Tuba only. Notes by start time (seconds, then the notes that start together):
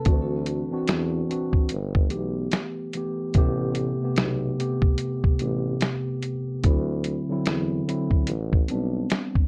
0.06 D2
0.89 E2
1.72 G1
2.13 B1
3.35 A1
4.18 B1
5.41 A1
6.64 D2
7.47 E2
8.29 A1
8.70 B1